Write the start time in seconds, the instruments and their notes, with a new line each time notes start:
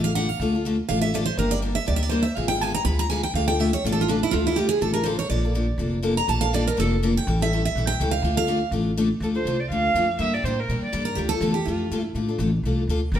Already playing: upright bass A1
0.04 steel-string acoustic guitar F5
0.15 steel-string acoustic guitar D3 A3 D4 F4 A4 F#5
0.29 steel-string acoustic guitar F5
0.40 upright bass D2, steel-string acoustic guitar D3 A3 D4 F4 A4
0.55 steel-string acoustic guitar D4 F4 A4
0.65 steel-string acoustic guitar D3 A3 D4 F4 A4
0.89 upright bass A1, steel-string acoustic guitar D3 A3 D4 F4 A4 F5
1.01 steel-string acoustic guitar E5
1.14 steel-string acoustic guitar D3 A3 D4 F4 A4 D5
1.26 steel-string acoustic guitar C5
1.37 upright bass G1, steel-string acoustic guitar D3 G3 A#3 D4 G4 A#4
1.51 steel-string acoustic guitar A#3 D4 G4 D5
1.62 steel-string acoustic guitar D3 G3 A#3 D4 G4
1.75 steel-string acoustic guitar E5
1.86 upright bass D2, steel-string acoustic guitar D3 G3 A#3 D4 G4 D5
1.96 steel-string acoustic guitar E5
2.03 steel-string acoustic guitar D5
2.09 steel-string acoustic guitar D3 G3 A#3 D4 G4 C5
2.23 steel-string acoustic guitar E5
2.36 upright bass G#1, steel-string acoustic guitar D3 G#3 B3 F4 G#4 F5
2.48 steel-string acoustic guitar B3 F4 G#4 G5
2.61 steel-string acoustic guitar D3 G#3 B3 F4 G#4 G#5
2.74 steel-string acoustic guitar A#5
2.85 upright bass D2, steel-string acoustic guitar D3 G#3 B3 F4 G#4 B5
2.99 steel-string acoustic guitar A#5
3.10 steel-string acoustic guitar D3 G#3 B3 F4 G#4 G#5
3.23 steel-string acoustic guitar G5
3.34 upright bass D2, steel-string acoustic guitar D3 A3 D4 F4 A4 F5
3.48 steel-string acoustic guitar D4 F4 A4 G5
3.59 steel-string acoustic guitar D3 A3 D4 F4 A4 E5
3.73 steel-string acoustic guitar C#5
3.84 upright bass A1, steel-string acoustic guitar D3 A3 D4 F4 A4 D5
3.92 steel-string acoustic guitar A4
4.01 steel-string acoustic guitar F4
4.08 steel-string acoustic guitar D3 A3 D4 F4 A4
4.23 steel-string acoustic guitar E4
4.31 upright bass D2, steel-string acoustic guitar D3 A3 D4 F4 A4
4.46 steel-string acoustic guitar D4 E4 F4 A4
4.56 steel-string acoustic guitar D3 A3 D4 F4 G4 A4
4.69 steel-string acoustic guitar G#4
4.81 upright bass A1, steel-string acoustic guitar D3 A3 D4 F4 A4
4.93 steel-string acoustic guitar A#4
5.04 steel-string acoustic guitar D3 A3 D4 F4 A4 C5
5.19 steel-string acoustic guitar C#5
5.30 upright bass A#1, steel-string acoustic guitar D3 F3 A#3 D4 A4 D5
5.45 steel-string acoustic guitar A#3 D4 A4
5.55 steel-string acoustic guitar D3 F3 A#3 D4 A4
5.78 upright bass F1, steel-string acoustic guitar D3 F3 A#3 D4 A4
6.03 steel-string acoustic guitar D3 F3 A#3 D4 A4
6.17 steel-string acoustic guitar A#5
6.28 upright bass A#1, steel-string acoustic guitar D3 F3 A#3 D4 A4 A5
6.41 steel-string acoustic guitar A#3 D4 A4 F5
6.53 steel-string acoustic guitar D3 F3 A#3 D4 A4 D5
6.67 steel-string acoustic guitar A#4
6.77 upright bass F1, steel-string acoustic guitar D3 F3 A#3 D4 A4
7.03 steel-string acoustic guitar D3 F3 A#3 D4 A4
7.17 steel-string acoustic guitar G5
7.27 upright bass A1, steel-string acoustic guitar E3 G3 C#4 E4 A4
7.41 steel-string acoustic guitar C#4 E4 A4 E5
7.53 steel-string acoustic guitar E3 G3 C#4 E4 A4
7.65 steel-string acoustic guitar E5
7.75 upright bass A#1, steel-string acoustic guitar E3 G3 C#4 E4 A4
7.87 steel-string acoustic guitar G5
8.00 upright bass C#2, steel-string acoustic guitar E3 G3 C#4 E4 A4
8.11 steel-string acoustic guitar F5
8.22 upright bass D2, steel-string acoustic guitar D3 A3 D4 F4 A4
8.36 steel-string acoustic guitar D4 F4 A4 F5
8.47 steel-string acoustic guitar D3 A3 D4 F4 A4
8.71 upright bass A1, steel-string acoustic guitar D3 A3 D4 F4 A4
8.97 steel-string acoustic guitar D3 A3 D4 F4 A4
9.20 upright bass D2, steel-string acoustic guitar D3 A3 D4 F4 A4, violin A4
9.35 steel-string acoustic guitar D4 F4 A4, violin C5
9.45 upright bass C2, steel-string acoustic guitar D3 A3 D4 F4 A4
9.60 violin D5
9.70 upright bass D2, steel-string acoustic guitar D3 A3 D4 F4 A4, violin F5
9.94 upright bass F2, steel-string acoustic guitar D3 A3 D4 F4 A4
10.19 upright bass G2, steel-string acoustic guitar D3 G3 A#3 D4 G4, violin E5
10.34 steel-string acoustic guitar A#3 D4 G4, violin D5
10.43 upright bass A2, steel-string acoustic guitar D3 G3 A#3 D4 G4, violin C5
10.60 violin A#4
10.69 upright bass A#2, steel-string acoustic guitar D3 G3 A#3 D4 G4
10.81 violin D5, muted upright bass stroke
10.93 upright bass G2, steel-string acoustic guitar D3 G3 A#3 D4 G4
11.05 steel-string acoustic guitar A#4
11.15 upright bass D2, steel-string acoustic guitar D3 A3 D4 F4 G4 A4
11.29 steel-string acoustic guitar D4 F4 A4
11.40 upright bass E2, steel-string acoustic guitar D3 A3 D4 F4 A4
11.54 steel-string acoustic guitar G4
11.65 upright bass F2, steel-string acoustic guitar D3 A3 D4 F4 A4
11.91 upright bass G2, steel-string acoustic guitar D3 A3 D4 F4 A4
11.99 steel-string acoustic guitar E4
12.15 upright bass A2, steel-string acoustic guitar D3 A3 D4 F4 A4
12.28 steel-string acoustic guitar D4 F4 A4
12.38 upright bass A1, steel-string acoustic guitar D3 A3 D4 F4 A4
12.63 upright bass C2, steel-string acoustic guitar D3 A3 D4 F4 A4
12.87 upright bass D2, steel-string acoustic guitar D3 A3 D4 F4 A4
13.12 upright bass G1, steel-string acoustic guitar D3 G3 A#3 D4 G4, violin A#4